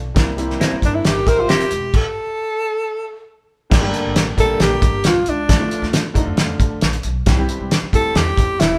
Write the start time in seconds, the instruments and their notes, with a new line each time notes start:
Already playing: upright bass B1
0.15 upright bass C2, upright piano G3 A#3 C4 E4, kick, snare, closed hi-hat
0.37 upright piano G3 A#3 C4 E4, horn section C4 E4 G4, closed hi-hat
0.50 snare
0.60 clean electric guitar C4 E4 A#4, snare, closed hi-hat
0.72 muted upright bass stroke
0.82 upright bass G1, vibraphone D4, tenor saxophone D4, kick, closed hi-hat
0.95 tenor saxophone E4, vibraphone E4
1.04 upright bass G1, horn section E4 G4 A#4, tenor saxophone G4, vibraphone G4, snare, closed hi-hat
1.27 horn section E4 G4 C5, tenor saxophone A#4, kick, closed hi-hat
1.38 upright bass A#1, vibraphone F4, tenor saxophone F4
1.48 upright bass D#1, clean electric guitar C4 E4 A#4, vibraphone G4, tenor saxophone G4, snare, closed hi-hat
1.60 closed hi-hat
1.71 upright bass E1, closed hi-hat
1.94 tenor saxophone A4, kick, crash
3.70 upright bass G1, upright piano D3 G3 A#3 D4 G4, kick, snare, crash
3.81 upright piano D3 G3 A3 D4 G4
3.87 upright piano A#3
3.94 closed hi-hat
4.05 upright bass G1
4.16 upright bass A1, snare, closed hi-hat
4.37 upright bass A#1, upright piano D3 G3 A#3 D4 F4, vibraphone A4, tenor saxophone A4, kick, closed hi-hat
4.44 upright piano G4
4.60 upright bass A#1, vibraphone G4, tenor saxophone G4, snare, closed hi-hat
4.82 upright bass G1, kick, closed hi-hat
5.04 upright bass C2, vibraphone F4, tenor saxophone F4, snare, closed hi-hat
5.26 upright bass C#2, vibraphone D4, tenor saxophone D4, closed hi-hat
5.48 upright bass D2, upright piano D3 F3 A3 D4 F4, kick, snare, closed hi-hat
5.59 upright piano D3 F3 A3 D4 F4
5.71 closed hi-hat
5.82 upright bass D2, snare
5.93 snare, closed hi-hat
6.14 upright bass D#2, upright piano D3 F3 A3 D4 D#4, kick, closed hi-hat
6.21 upright piano F4
6.27 upright bass F2
6.37 upright bass F2, snare, closed hi-hat
6.60 upright bass D2, kick, closed hi-hat
6.81 upright bass A#1, snare, closed hi-hat
6.93 closed hi-hat
7.03 upright bass B1, closed hi-hat
7.26 upright bass C2, upright piano E3 G3 C4 E4 G4, kick, snare, closed hi-hat
7.37 upright piano E3 G3 C4 E4 G4
7.49 closed hi-hat
7.60 upright bass C2
7.71 snare, closed hi-hat
7.83 muted upright bass stroke
7.93 upright bass D2, upright piano E3 G3 C4 E4 G4, vibraphone A4, tenor saxophone A4, kick, closed hi-hat
8.15 upright bass E2, vibraphone G4, tenor saxophone G4, snare, closed hi-hat
8.37 upright bass E2, kick, closed hi-hat
8.59 upright bass D#1, vibraphone E4, tenor saxophone E4, snare, closed hi-hat